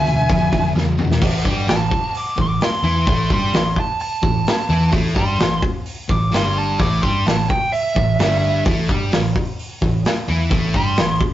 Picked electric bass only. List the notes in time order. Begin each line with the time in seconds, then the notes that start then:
Already playing: D2
0.29 F2
0.75 E2
1.22 A1
1.45 G2
1.67 A1
2.38 A1
2.83 E2
3.07 A1
3.31 G2
3.53 A1
4.24 A1
4.69 E2
4.93 A1
5.16 G2
5.38 A1
6.10 A1
6.32 G1
6.80 A1
7.03 G2
7.26 A1
7.96 A1
8.19 G1
8.66 A1
8.89 G2
9.14 A1
9.83 A1
10.29 E2
10.51 A1
10.74 G2
10.98 A1